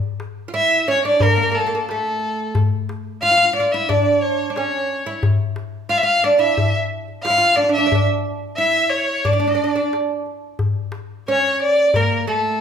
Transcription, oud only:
0.48 0.53 F4 medium
0.54 0.88 E4 medium
0.88 1.05 C#4 medium
1.05 1.22 D4 medium
1.23 1.29 A#3 medium
1.30 1.35 A#3 soft
1.36 1.42 A#3 medium
1.43 1.50 A#3 soft
1.51 1.58 A#3 medium
1.59 1.65 A#3 soft
1.67 1.74 A#3 medium
1.75 1.81 A#3 soft
1.91 2.52 A3 medium
3.22 3.30 F4 medium
3.31 3.36 F4 medium
3.37 3.44 F4 medium
3.45 3.52 F4 medium
3.53 3.59 F4 medium
3.60 3.67 F4 medium
3.74 3.88 E4 medium
3.89 4.49 D4 medium
4.50 4.56 D4 soft
4.57 5.03 C#4 medium
5.06 5.22 E4 medium
5.89 6.02 F4 medium
6.03 6.23 F4 medium
6.24 6.38 D4 medium
6.39 6.71 E4 medium
7.25 7.30 F4 medium
7.30 7.37 E4 medium
7.38 7.56 F4 medium
7.57 7.63 D4 medium
7.64 7.68 D4 soft
7.69 7.77 D4 medium
7.78 7.85 D4 medium
7.87 7.94 D4 medium
7.95 8.02 D4 medium
8.58 9.24 E4 medium
9.25 9.32 D4 medium
9.33 9.38 D4 soft
9.40 9.46 D4 medium
9.47 9.54 D4 soft
9.55 9.63 D4 medium
9.64 9.71 D4 soft
9.76 9.91 D4 medium
11.28 11.97 C#4 medium
11.96 12.27 A#3 medium
12.27 12.61 A3 medium

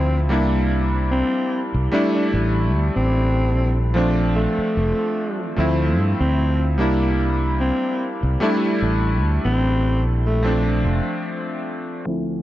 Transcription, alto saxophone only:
0.00 0.20 C4 medium
1.11 1.61 C4 medium
1.93 2.07 D4 medium
2.14 2.27 D4 medium
2.96 3.77 C4 loud
4.36 5.50 A3 medium
6.20 6.68 C4 medium
7.60 8.10 C4 medium
9.45 10.04 C4 loud
10.26 10.53 A3 medium

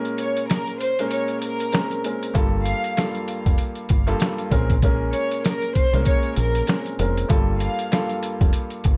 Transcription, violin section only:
0.19 0.47 C#5 medium
0.49 0.77 A#4 medium
0.79 1.08 C5 loud
1.11 1.39 C#5 medium
1.42 1.88 A#4 medium
2.65 3.11 F5 medium
5.13 5.41 C#5 medium
5.46 5.73 A#4 medium
5.75 6.03 C5 loud
6.06 6.34 C#5 medium
6.37 6.83 A#4 medium
7.60 8.06 F5 medium

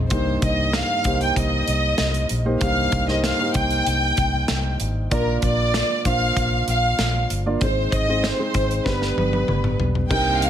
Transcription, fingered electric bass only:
0.11 0.37 C2 medium
0.42 0.81 C2 medium
1.05 1.31 C2 medium
1.37 1.62 C2 medium
1.68 1.93 C2 medium
1.99 2.25 C2 medium
2.31 2.56 A#1 medium
2.62 2.87 C2 medium
2.92 3.31 C2 medium
3.55 3.81 C2 medium
3.87 4.12 C2 medium
4.18 4.43 C2 medium
4.50 4.75 C2 medium
4.81 5.06 G#1 medium
5.12 5.37 A#1 medium
5.43 5.81 A#1 medium
6.06 6.31 A#1 medium
6.37 6.62 A#1 medium
6.68 6.93 A#1 medium
6.99 7.24 A#1 medium
7.31 7.56 G1 medium
7.61 7.87 G#1 medium
7.92 8.31 G#1 medium
8.55 8.80 G#1 medium
8.86 9.11 G1 medium
9.17 9.43 G1 medium
9.49 9.74 G1 medium
9.79 10.05 B1 medium
10.11 10.50 C2 medium

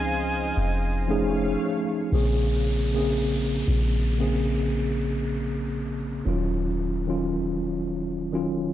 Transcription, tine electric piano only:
0.00 1.08 F3 medium
0.00 1.10 C4 medium
0.00 1.09 C#4 medium
0.00 1.10 D#4 medium
0.00 1.10 G#4 medium
1.08 1.98 F3 medium
1.08 1.98 A3 medium
1.08 1.98 C#4 medium
1.08 1.99 D#4 medium
1.08 1.99 G#4 loud
2.11 2.79 C#3 medium
2.11 2.79 A#3 medium
2.11 2.80 C4 medium
2.11 2.80 G#4 loud
2.93 4.01 C#3 medium
2.93 4.01 A#3 medium
2.93 4.02 C4 medium
2.93 4.03 G#4 medium
4.18 5.95 C#3 medium
4.18 5.95 A#3 medium
4.18 5.96 C4 medium
4.18 5.96 G#4 medium
6.25 6.93 D#3 medium
6.25 6.93 F#3 medium
6.25 6.94 C#4 medium
6.25 6.94 F4 loud
7.07 8.15 D#3 medium
7.07 8.15 F#3 medium
7.07 8.16 C#4 medium
7.07 8.16 F4 medium
8.32 8.73 D#3 medium
8.32 8.73 F#3 medium
8.32 8.73 C#4 medium
8.32 8.73 F4 medium

